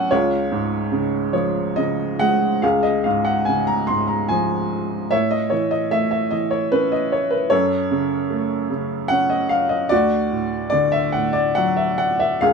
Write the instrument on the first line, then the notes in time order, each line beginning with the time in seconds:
upright piano
Already playing: C#3 F#3 A3 C#4 F#5 G#5
0.11 C#2 F4 C#5
0.52 G#2
0.92 C#3
1.33 F3 C#5
1.76 C#3 D#5
2.19 G#3 F#5
2.62 C#2 G#4 F5
2.83 D#5
3.04 G#2 F5
3.25 F#5
3.45 C#3 G#5
3.67 A#5
3.87 G#2 C6
4.08 A#5
4.28 F3 G#5
5.11 A2 C#5 E5
5.31 D#5
5.50 E3 C#5
5.71 D#5
5.91 A3 E5
6.11 E5
6.31 E3 D#5
6.51 C#5
6.72 C#4 B4
6.92 D#5
7.12 C#5
7.31 B4
7.50 F#2 A4 C#5
7.91 C#3
8.30 A3
8.70 C#3
9.08 C#4 F#5
9.30 D#5
9.49 F5
9.69 D#5
9.89 D2 F#4 D5
10.32 A2
10.70 D3 D5
10.92 E5
11.12 A2 F#5
11.33 D5
11.55 F#3 F#5
11.76 E5
11.98 F#5
12.20 E5
12.41 C#2 G#4 F5